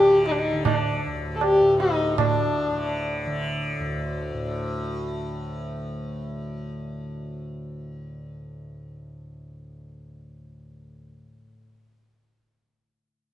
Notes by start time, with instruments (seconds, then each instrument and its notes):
Already playing: tanpura D2 A2 D3, sarangi G4
0.26 sarangi D#4, tabla te
0.32 sarangi D4
0.39 sarangi D#4
0.52 tanpura D3
0.65 sarangi D4, tabla na, tabla ge
1.06 tanpura D2
1.35 sarangi A4
1.41 sarangi G4, tabla na
1.61 tanpura A2
1.80 sarangi D#4, tabla te
2.18 tanpura A2, sarangi D4, tabla na, tabla ge
2.72 tanpura D3
3.25 tanpura D3
3.79 tanpura D2
4.33 tanpura A2